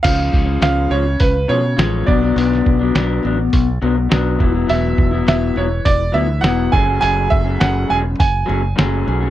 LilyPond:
<<
  \new Staff \with { instrumentName = "Upright piano" } { \time 4/4 \key fis \minor \tempo 4 = 103 eis''4 eis''8 cis''8 b'8 cis''4 d''8~ | d''4. r2 r8 | e''4 e''8 cis''8 d''8 e''8 fis''8 gis''8 | gis''8 e''8 fis''8 gis''8 gis''4. r8 | }
  \new Staff \with { instrumentName = "Clean electric guitar" } { \time 4/4 \key fis \minor <cis eis gis cis'>8. <eis gis cis'>16 <cis eis gis cis'>8 <cis eis gis cis'>8. r16 <cis eis gis cis'>8 <cis eis gis cis'>8 <b, fis b d'>16 <fis b d'>16 | <b, fis b d'>8. <fis b d'>16 <b, fis b d'>8 <b, fis b d'>8. r16 <b, fis b d'>8 <b, fis b d'>8 <e fis b e'>16 <fis b e'>16 | <e fis b e'>8. <fis b e'>16 <e fis b e'>8 <e fis b e'>8. r16 <e fis b e'>8 <e fis b e'>8 <fis, cis fis a cis' gis'>16 <fis a cis' gis'>16 | <fis, cis fis a cis' gis'>8. <fis a cis' gis'>16 <fis, cis fis a cis' gis'>8 <fis a cis' gis'>8. r16 <fis a cis' gis'>8 <fis, cis fis a cis' gis'>8 <fis a cis' gis'>16 <fis a cis' gis'>16 | }
  \new Staff \with { instrumentName = "Fingered electric bass" } { \clef bass \time 4/4 \key fis \minor cis,8 cis,8 cis,8 cis,8 cis,8 b,8 a,,8 b,,8 | b,,8 b,,8 b,,8 a,,8 b,,8 b,,8 b,,8 e,,8 | e,,8 e,,8 e,,8 e,,8 e,,8 d,8 e,,8 fis,,8 | fis,,8 fis,,8 fis,,8 e,,8 fis,,8 fis,,8 fis,,8 b,,8 | }
  \new DrumStaff \with { instrumentName = "Drums" } \drummode { \time 4/4 <cymc hho bd>8 bd8 <hho sn>4 <hho bd>4 <hho sn>8 bd8 | hho16 sn16 bd8 <hho sn>4 <hho bd>4 <hho sn>8 bd8 | hho8 bd8 <hho sn>4 <hho bd>4 <hho sn>8 bd8 | hho8 bd8 <hho sn>4 <hho bd>4 <hho sn>4 | }
>>